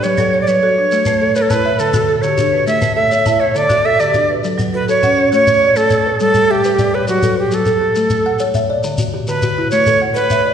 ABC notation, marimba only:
X:1
M:12/8
L:1/8
Q:3/8=136
K:Amix
V:1 name="Marimba"
[Gd]2 c B2 D c2 c A2 e | A2 A G2 B A2 c A2 e | A2 A G2 B A2 A F2 c | F2 z8 z2 |
z12 | z12 |]
V:2 name="Marimba"
z F,2 z F2 z A,2 z E2 | z D,2 z D2 z A,2 z E2 | z D,2 z D2 z F,2 z C2 | z12 |
z12 | z12 |]